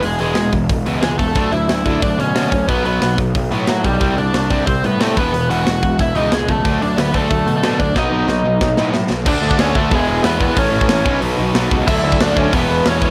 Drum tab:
CC |----------------|----------------|----------------|----------------|
HH |o-o-o-o-o-o-o-o-|o-o-o-o-o-o-o-o-|o-o-o-o-o-o-o-o-|o-o-o-o-o-o-o-o-|
SD |----o-------o---|----o-------o---|----o-------o---|----o-------o---|
BD |------o-o-----o-|o-----o-o-----o-|o-----o-o-----o-|o-----o-o-----o-|

CC |----------------|----------------|----------------|x---------------|
HH |o-o-o-o-o-o-o-o-|o-o-o-o-o-o-o-o-|----------------|----o---o---o---|
SD |----o-------o---|----o-------o---|o---o---o-o-o-o-|----o-------o---|
BD |------o-o-----o-|o-----o-o-----o-|o-------o-------|o--o--o-o-----o-|

CC |----------------|x---------------|
HH |o---o---o---o---|----o---o---o---|
SD |----o-------o---|----o-------o---|
BD |o--o--o-------o-|o--o--o-o-----o-|